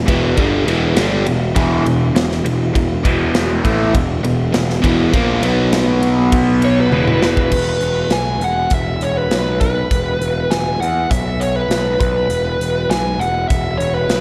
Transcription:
0.07 0.35 E1 medium
0.07 0.36 E2 medium
0.07 0.37 B2 medium
0.07 0.37 E3 loud
0.07 kick loud
0.07 ride medium
0.37 0.65 G1 medium
0.37 0.66 G2 medium
0.37 0.66 D3 loud
0.37 0.66 G3 loud
0.37 kick loud
0.37 ride medium
0.66 0.94 E1 loud
0.66 0.95 E2 medium
0.66 0.96 B2 medium
0.66 0.96 E3 loud
0.66 ride medium
0.95 1.24 G1 loud
0.95 1.25 G2 loud
0.95 1.25 D3 medium
0.95 1.25 G3 loud
0.95 snare loud
0.95 ride loud
1.26 1.54 E1 medium
1.26 1.50 E2 medium
1.26 1.50 B2 medium
1.26 ride medium
1.55 1.83 E1 loud
1.55 1.84 E2 loud
1.55 1.84 B2 medium
1.55 1.85 E3 loud
1.55 kick loud
1.55 ride loud
1.85 2.13 E1 medium
1.85 2.09 E2 medium
1.85 2.09 B2 medium
1.85 ride medium
2.14 2.42 E1 medium
2.14 2.39 E2 medium
2.14 2.39 B2 medium
2.14 snare loud
2.14 ride medium
2.32 snare soft
2.45 2.72 E1 medium
2.45 2.69 E2 medium
2.45 2.69 B2 medium
2.45 ride medium
2.75 3.02 E1 medium
2.75 2.99 E2 medium
2.75 2.99 B2 medium
2.75 kick medium
2.75 ride medium
3.05 3.60 E1 loud
3.05 3.64 E2 medium
3.05 3.63 B2 loud
3.05 3.63 E3 medium
3.05 kick loud
3.05 ride medium
3.35 snare loud
3.35 ride medium
3.64 3.92 A1 loud
3.64 3.93 A2 medium
3.64 3.93 E3 medium
3.64 3.93 A3 medium
3.64 kick loud
3.64 ride medium
3.93 4.22 E1 medium
3.93 4.17 E2 medium
3.93 4.18 B2 medium
3.93 kick loud
3.93 ride loud
4.23 4.51 E1 medium
4.23 4.47 E2 medium
4.23 4.48 B2 medium
4.23 ride medium
4.53 4.81 E1 medium
4.53 4.77 E2 medium
4.53 4.77 B2 medium
4.53 snare loud
4.53 ride medium
4.70 snare soft
4.82 5.11 E1 loud
4.82 5.11 E2 loud
4.82 5.11 B2 loud
4.82 5.12 E3 loud
4.82 kick loud
4.82 ride medium
5.12 5.41 A#1 medium
5.12 5.41 A#2 medium
5.12 5.41 F3 medium
5.12 5.42 A#3 loud
5.12 kick loud
5.12 ride loud
5.41 6.87 B1 medium
5.41 6.90 B2 medium
5.41 6.90 F#3 medium
5.41 6.91 B3 loud
5.41 ride medium
5.73 snare loud
5.73 ride loud
6.03 ride medium
6.32 kick loud
6.32 ride loud
6.62 6.77 C#5 medium
6.62 ride medium
6.81 7.24 B4 loud
6.91 7.47 E1 medium
6.91 7.51 E2 medium
6.91 7.51 B2 medium
6.91 7.51 E3 medium
6.91 high tom medium
7.08 mid tom medium
7.23 8.15 B4 loud
7.23 snare loud
7.37 kick medium
7.51 7.77 E1 medium
7.51 kick loud
7.51 crash medium
7.79 8.06 E1 medium
7.79 closed hi-hat medium
8.09 8.36 B1 medium
8.09 8.42 G#5 loud
8.09 snare loud
8.09 closed hi-hat medium
8.39 8.66 E1 medium
8.39 closed hi-hat medium
8.44 8.73 F#5 medium
8.70 8.97 E1 medium
8.70 9.03 E5 medium
8.70 kick loud
8.70 closed hi-hat medium
9.01 9.27 E1 medium
9.01 9.17 C#5 medium
9.01 closed hi-hat medium
9.17 9.60 B4 medium
9.30 9.82 B1 medium
9.30 snare loud
9.30 closed hi-hat medium
9.61 10.53 B4 medium
9.61 kick loud
9.61 closed hi-hat medium
9.91 10.17 E1 medium
9.91 kick loud
9.91 closed hi-hat medium
10.20 10.46 E1 medium
10.20 closed hi-hat medium
10.50 10.76 E1 medium
10.50 10.78 G#5 loud
10.50 snare loud
10.50 closed hi-hat medium
10.79 11.05 E2 medium
10.79 11.11 F#5 loud
10.79 closed hi-hat medium
11.10 11.62 B1 medium
11.10 11.41 E5 medium
11.10 kick loud
11.10 closed hi-hat loud
11.40 11.56 C#5 medium
11.40 closed hi-hat medium
11.56 11.99 B4 medium
11.68 11.95 B1 medium
11.68 snare loud
11.68 closed hi-hat medium
12.00 12.26 B1 medium
12.00 12.92 B4 loud
12.00 kick loud
12.00 closed hi-hat medium
12.29 12.55 E1 medium
12.29 closed hi-hat medium
12.59 12.85 E1 medium
12.59 closed hi-hat medium
12.89 13.15 B1 medium
12.89 13.20 G#5 loud
12.89 snare loud
12.89 closed hi-hat medium
13.19 13.45 E1 medium
13.19 13.48 F#5 medium
13.19 closed hi-hat medium
13.49 13.76 E1 loud
13.49 13.76 E5 loud
13.49 kick loud
13.49 closed hi-hat medium
13.77 14.05 E1 medium
13.77 13.94 C#5 medium
13.77 closed hi-hat medium
13.94 14.21 B4 medium
14.08 14.21 B1 medium
14.08 snare loud
14.08 closed hi-hat medium

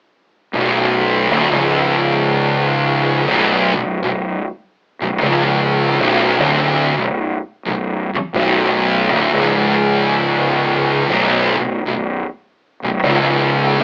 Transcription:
0.54 1.27 B0 medium
0.54 1.30 B1 medium
1.31 1.50 D1 medium
1.31 1.51 D2 loud
1.51 3.22 C#1 medium
1.51 3.25 C#2 medium
3.25 3.72 B0 medium
3.25 3.73 B1 loud
3.75 4.02 B0 medium
3.75 4.02 B1 medium
4.03 4.42 B0 medium
4.03 4.36 B1 medium
5.01 5.20 B0 medium
5.01 5.21 B1 medium
5.21 5.95 C#1 loud
5.21 5.97 C#2 medium
5.99 6.37 B0 medium
5.99 6.38 B1 loud
6.39 6.93 D1 medium
6.39 6.95 D2 loud
6.97 7.34 B0 medium
6.97 7.29 B1 medium
7.65 8.11 B0 medium
7.65 8.07 B1 medium
8.14 muted fingered electric bass stroke soft
8.14 muted distorted electric guitar stroke medium
8.34 9.08 B0 loud
8.34 9.11 B1 loud
9.11 9.31 D1 medium
9.11 9.31 D2 medium
9.32 11.04 C#1 medium
9.32 11.07 C#2 loud
11.08 11.54 B0 medium
11.08 11.55 B1 medium
11.57 11.84 B0 medium
11.57 11.85 B1 medium
11.85 12.23 B0 medium
11.85 12.18 B1 medium
12.82 13.02 B0 medium
12.82 13.04 B1 medium
13.03 13.76 C#1 loud
13.03 13.79 C#2 medium
13.80 13.84 D1 loud

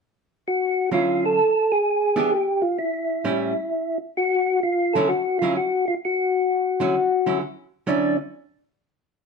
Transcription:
0.48 0.90 F#4 medium
0.92 1.38 D3 soft
0.92 1.38 F#3 soft
0.92 1.38 C#4 soft
0.92 1.38 E4 medium
0.92 1.24 F4 medium
1.26 1.72 A4 loud
1.72 2.34 G#4 medium
2.16 2.30 E3 medium
2.16 2.30 B3 medium
2.16 2.30 D4 medium
2.16 2.30 G4 medium
2.32 2.63 G4 medium
2.62 2.78 F4 medium
2.79 3.98 E4 medium
3.24 3.52 A2 soft
3.24 3.52 G3 medium
3.24 3.52 C#4 medium
3.24 3.53 E4 medium
4.17 4.60 F#4 medium
4.63 4.95 F4 medium
4.93 5.09 D3 medium
4.93 5.09 F#3 medium
4.93 5.09 C#4 medium
4.93 5.09 E4 medium
4.93 5.08 A4 medium
5.09 5.38 F#4 medium
5.39 5.55 D3 medium
5.39 5.55 F#3 medium
5.39 5.56 C#4 medium
5.39 5.56 E4 medium
5.39 5.54 F4 medium
5.57 5.85 F#4 medium
5.88 5.95 F4 medium
6.05 7.39 F#4 medium
6.80 6.94 D3 medium
6.80 6.94 F#3 medium
6.80 6.94 C#4 medium
6.80 6.94 E4 medium
7.26 7.40 D3 medium
7.26 7.41 F#3 soft
7.26 7.40 C#4 medium
7.26 7.41 E4 medium
7.87 8.16 D3 medium
7.87 8.15 F#3 medium
7.87 8.16 C#4 medium
7.87 8.17 D4 medium
7.87 8.16 E4 medium

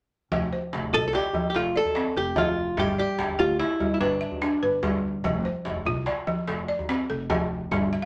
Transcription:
0.32 0.51 F1 loud
0.32 0.73 F3 medium
0.32 djembe slap medium
0.32 djembe bass medium
0.42 djembe tone medium
0.53 1.14 C5 medium
0.73 0.95 F1 medium
0.73 djembe slap medium
0.83 djembe slap soft
0.83 djembe bass soft
0.93 1.12 C2 medium
0.93 1.34 F4 medium
0.93 1.06 A4 medium
0.93 djembe slap soft
0.93 djembe tone medium
1.08 1.14 A4 medium
1.13 1.49 G4 medium
1.13 1.74 D5 medium
1.13 djembe slap medium
1.33 1.75 F3 medium
1.33 djembe tone medium
1.33 djembe bass medium
1.50 1.55 G4 medium
1.54 1.74 F1 medium
1.54 1.76 F4 medium
1.54 2.16 A4 medium
1.54 djembe slap medium
1.65 djembe slap soft
1.76 2.17 A4 loud
1.76 2.37 D5 medium
1.85 djembe tone medium
1.85 djembe bass soft
1.95 2.37 C4 medium
1.95 djembe slap medium
2.16 2.74 F1 medium
2.16 2.38 G4 medium
2.16 2.78 A4 medium
2.16 djembe slap soft
2.26 djembe slap soft
2.36 2.78 F3 medium
2.36 2.80 F4 medium
2.36 djembe slap medium
2.36 djembe tone medium
2.36 djembe bass medium
2.77 2.97 G1 loud
2.77 3.19 G3 medium
2.77 2.98 G4 medium
2.77 djembe slap medium
2.77 djembe bass medium
2.87 djembe tone soft
2.98 3.41 G4 medium
2.98 3.60 D5 medium
3.18 3.41 G1 medium
3.18 djembe slap medium
3.29 djembe slap soft
3.29 djembe bass medium
3.39 3.58 D2 medium
3.39 3.59 F4 medium
3.39 3.80 G4 medium
3.39 djembe slap soft
3.39 djembe tone medium
3.59 3.93 E4 medium
3.59 4.20 E5 medium
3.59 djembe slap medium
3.80 4.22 G3 medium
3.80 djembe tone medium
3.80 djembe bass medium
3.94 4.00 E4 medium
4.01 4.20 G1 medium
4.01 4.79 D4 medium
4.01 4.61 B4 medium
4.01 djembe slap medium
4.11 djembe slap soft
4.21 4.83 E5 medium
4.32 djembe tone soft
4.32 djembe bass soft
4.42 4.83 D4 medium
4.42 djembe slap medium
4.62 5.20 G1 medium
4.62 5.24 B4 medium
4.62 djembe slap soft
4.73 djembe slap soft
4.83 5.24 G3 medium
4.83 djembe slap medium
4.83 djembe tone medium
4.83 djembe bass medium
5.24 5.44 F1 medium
5.24 5.66 F3 medium
5.24 djembe slap medium
5.24 djembe bass medium
5.34 djembe tone soft
5.45 6.07 C5 medium
5.65 5.88 F1 medium
5.65 djembe slap medium
5.75 djembe slap soft
5.75 djembe bass soft
5.85 6.05 C2 medium
5.85 6.27 F4 medium
5.85 djembe slap soft
5.85 djembe tone medium
6.06 6.67 D5 medium
6.06 djembe slap medium
6.27 6.68 F3 medium
6.27 djembe tone medium
6.47 6.67 F1 medium
6.47 7.08 A4 medium
6.47 djembe slap medium
6.58 djembe slap soft
6.68 7.30 D5 medium
6.79 djembe tone medium
6.79 djembe bass medium
6.89 7.30 C4 medium
6.89 djembe slap medium
7.10 7.67 F1 medium
7.10 7.71 A4 medium
7.10 djembe slap soft
7.20 djembe slap soft
7.30 7.71 F3 medium
7.30 djembe slap medium
7.30 djembe tone medium
7.30 djembe bass medium
7.71 7.90 G1 loud
7.71 8.05 G3 medium
7.71 djembe slap medium
7.71 djembe bass medium
7.82 djembe slap soft
7.82 djembe tone soft
7.93 8.05 E5 medium

